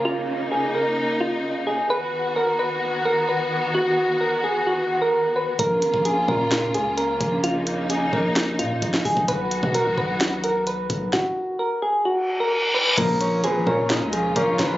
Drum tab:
CC |----------------|----------------|----------------|----------------|
HH |----------------|----------------|----------------|x-x-x---x-x-x-x-|
SD |----------------|----------------|----------------|--------o-------|
BD |----------------|----------------|----------------|o--o--o-------o-|

CC |----------------|----------------|----------------|x---------------|
HH |x-x-x---x-x-x-o-|x-x-x---x-x-x-x-|----------------|x-x-x---x-x-x-x-|
SD |--------o----o--|--------o-------|o---------------|--------o-----o-|
BD |------o-----o-oo|o--o--o-------o-|o---------------|o-----o-----o-o-|